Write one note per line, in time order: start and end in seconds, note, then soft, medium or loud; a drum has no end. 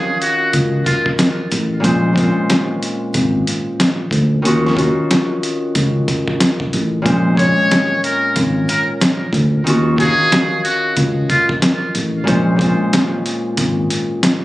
0.00 1.89 D#3 medium
0.00 1.83 C#4 medium
0.00 2.01 F#4 medium
0.00 0.17 G#4 medium
0.00 1.22 F5 medium
0.21 0.50 F#4 medium
0.21 closed hi-hat medium
0.53 0.81 C#2 medium
0.53 kick medium
0.53 closed hi-hat loud
0.86 1.04 F4 medium
0.86 kick medium
0.86 closed hi-hat medium
1.06 kick medium
1.19 snare loud
1.19 snare medium
1.19 closed hi-hat loud
1.52 1.79 A1 loud
1.52 closed hi-hat medium
1.80 2.12 A#2 medium
1.80 2.13 G#3 medium
1.80 2.11 C#4 medium
1.80 kick loud
1.84 2.28 A#1 loud
1.84 2.12 C5 loud
1.84 closed hi-hat medium
2.13 4.50 A#2 medium
2.13 4.50 G#3 medium
2.13 2.24 C4 medium
2.13 kick medium
2.18 4.16 C5 medium
2.18 closed hi-hat medium
2.23 4.43 C#4 medium
2.50 snare loud
2.50 snare medium
2.50 closed hi-hat medium
2.83 closed hi-hat medium
3.14 3.42 G#1 medium
3.14 kick medium
3.14 closed hi-hat loud
3.47 closed hi-hat medium
3.80 snare loud
3.80 snare medium
3.80 closed hi-hat loud
4.11 4.39 D2 medium
4.11 kick loud
4.11 closed hi-hat medium
4.42 4.89 D#2 loud
4.42 4.73 D#3 medium
4.42 4.71 C#4 medium
4.42 4.72 F4 medium
4.42 closed hi-hat medium
4.47 4.73 F#4 medium
4.66 snare soft
4.74 7.11 D#3 medium
4.74 7.05 C#4 medium
4.74 7.30 F4 medium
4.74 kick medium
4.79 7.23 F#4 medium
4.79 closed hi-hat medium
5.11 snare loud
5.11 snare medium
5.11 closed hi-hat medium
5.43 closed hi-hat medium
5.75 6.03 C#2 medium
5.75 kick medium
5.75 closed hi-hat loud
6.08 kick loud
6.08 closed hi-hat medium
6.28 kick medium
6.40 snare loud
6.40 snare medium
6.40 closed hi-hat loud
6.60 kick loud
6.73 7.01 A1 medium
6.73 closed hi-hat medium
7.02 7.34 A#2 medium
7.02 7.35 G#3 medium
7.02 7.33 C#4 medium
7.02 kick loud
7.02 closed hi-hat medium
7.06 7.50 A#1 loud
7.06 7.33 C5 loud
7.35 9.71 A#2 medium
7.35 9.71 G#3 medium
7.35 7.46 C4 soft
7.35 7.99 C#5 medium
7.35 kick medium
7.39 9.31 C#5 medium
7.39 closed hi-hat medium
7.44 9.65 C#4 medium
7.71 snare loud
7.71 snare medium
7.71 closed hi-hat medium
8.04 8.33 A#4 medium
8.04 closed hi-hat medium
8.36 8.63 G#1 loud
8.36 kick medium
8.36 closed hi-hat loud
8.69 8.88 A#4 medium
8.69 closed hi-hat medium
9.01 snare loud
9.01 snare medium
9.01 closed hi-hat loud
9.33 9.60 D2 medium
9.33 kick medium
9.33 closed hi-hat medium
9.64 10.11 D#2 loud
9.64 9.95 D#3 medium
9.64 9.93 C#4 medium
9.64 9.94 F4 medium
9.64 closed hi-hat medium
9.68 9.95 F#4 medium
9.96 12.32 D#3 medium
9.96 12.26 C#4 medium
9.96 11.66 F5 medium
9.96 kick medium
9.96 closed hi-hat medium
10.00 12.44 F#4 medium
10.00 10.61 G#4 medium
10.32 snare loud
10.32 snare medium
10.32 closed hi-hat medium
10.64 10.93 F#4 medium
10.64 closed hi-hat medium
10.97 11.24 C#2 medium
10.97 kick medium
10.97 closed hi-hat loud
11.30 11.48 F4 medium
11.30 kick medium
11.30 closed hi-hat medium
11.49 kick medium
11.62 snare loud
11.62 snare medium
11.62 closed hi-hat loud
11.95 12.22 A1 medium
11.95 closed hi-hat medium
12.24 12.72 A#1 loud
12.24 12.55 A#2 medium
12.24 12.57 G#3 medium
12.24 12.54 C#4 medium
12.24 kick loud
12.24 closed hi-hat medium
12.28 12.55 C5 loud
12.56 14.45 A#2 medium
12.56 14.45 G#3 medium
12.56 12.68 C4 soft
12.56 kick medium
12.61 14.45 C5 medium
12.61 closed hi-hat medium
12.66 14.45 C#4 medium
12.93 snare loud
12.93 snare medium
12.93 closed hi-hat medium
13.26 closed hi-hat medium
13.57 13.85 G#1 medium
13.57 kick medium
13.57 closed hi-hat loud
13.90 closed hi-hat medium
14.23 snare loud
14.23 snare medium
14.23 closed hi-hat loud